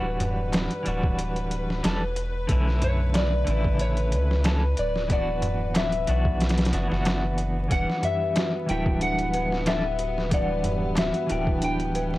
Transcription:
Already playing: sub bass D1, clean electric guitar E3 G3 D4 F#4, electric slide guitar B4, string section B4
0.20 closed hi-hat, darbuka dum
0.53 snare, closed hi-hat, darbuka tek
0.71 closed hi-hat
0.83 sub bass D1, clean electric guitar E3 G3 D4, closed hi-hat
0.88 clean electric guitar F#4
1.03 kick
1.19 closed hi-hat
1.36 closed hi-hat
1.51 closed hi-hat
1.70 snare
1.83 sub bass E1, clean electric guitar E3 G3 D4 A4, snare, closed hi-hat, darbuka tek
2.16 closed hi-hat
2.47 sub bass B1, clean electric guitar D3 A3 C#4, kick, closed hi-hat
2.52 clean electric guitar E4
2.68 snare
2.82 electric slide guitar C#5, closed hi-hat, darbuka dum
3.14 electric slide guitar D5, snare, closed hi-hat, darbuka tek
3.44 sub bass A1, clean electric guitar C#3 D3 A3, closed hi-hat
3.50 clean electric guitar E4
3.64 kick
3.79 electric slide guitar C#5, closed hi-hat
3.97 closed hi-hat
4.12 sub bass C#2, closed hi-hat
4.31 snare
4.44 clean electric guitar D3 A3 C#4 A4, snare, closed hi-hat, darbuka tek
4.77 sub bass D1, electric slide guitar D5, closed hi-hat
4.96 snare
5.08 clean electric guitar E3 B3 D4, electric slide guitar D5, kick, closed hi-hat
5.13 clean electric guitar F#4
5.42 closed hi-hat, darbuka dum
5.74 electric slide guitar E5, snare, closed hi-hat, darbuka tek
5.92 closed hi-hat
6.07 sub bass B1, clean electric guitar E3 B3 D4 F#4, closed hi-hat
6.25 kick
6.41 snare, closed hi-hat
6.49 snare, closed hi-hat
6.58 snare, closed hi-hat
6.65 snare, closed hi-hat
6.72 sub bass F#1, clean electric guitar E3 B3 D4 F#4, closed hi-hat
6.88 sub bass F#1, clean electric guitar E3 B3 D4, snare
6.93 clean electric guitar F#4
7.05 snare, closed hi-hat, darbuka tek
7.38 closed hi-hat
7.68 sub bass E1, clean electric guitar E3 G3 D4, string section B3, synth bell B4, electric slide guitar F#5, kick, closed hi-hat
7.74 clean electric guitar F#5
7.90 snare
8.03 synth bell G4, electric slide guitar E5, closed hi-hat, darbuka dum
8.36 synth bell F#4, snare, closed hi-hat, darbuka tek
8.66 sub bass D1, clean electric guitar E3 G3 D4, synth bell E4, electric slide guitar G5, closed hi-hat
8.71 clean electric guitar E5
8.86 kick
9.01 synth bell D4, electric slide guitar F#5, closed hi-hat
9.19 closed hi-hat
9.34 synth bell B4, closed hi-hat
9.52 snare
9.66 clean electric guitar E3 G3 D4 A4, synth bell G4, electric slide guitar E5, snare, closed hi-hat, darbuka tek
9.99 synth bell F#4, closed hi-hat
10.18 snare
10.29 clean electric guitar E3 G3 D4, synth bell B4, kick, closed hi-hat
10.34 electric slide guitar D5, clean electric guitar F#5
10.64 synth bell G4, closed hi-hat, darbuka dum
10.95 synth bell F#4, electric slide guitar E5, snare, closed hi-hat, darbuka tek
11.14 closed hi-hat
11.27 sub bass D1, clean electric guitar E3 G3 D4, synth bell E4, closed hi-hat
11.32 clean electric guitar G5
11.47 kick
11.62 synth bell D4, electric slide guitar G5, closed hi-hat
11.80 closed hi-hat
11.95 synth bell B4, closed hi-hat
12.14 snare

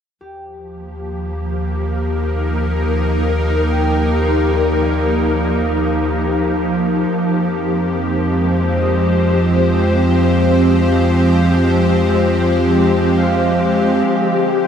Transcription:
0.21 sub bass D#2, ambient pad F3, harp G4
0.41 ambient pad G4
0.51 ambient pad A#3
1.19 ambient pad A#4
1.46 ambient pad D#4
2.82 harp D#5
3.68 harp G5
3.93 harp A#5
4.20 harp C6
4.53 harp D5
7.11 sub bass F2, synth drone F3 C4
7.47 ambient pad G#3
7.69 ambient pad C4
8.05 ambient pad C5
8.81 harp D#5
13.18 harp F5
14.05 ambient pad D3, synth drone F3 C4

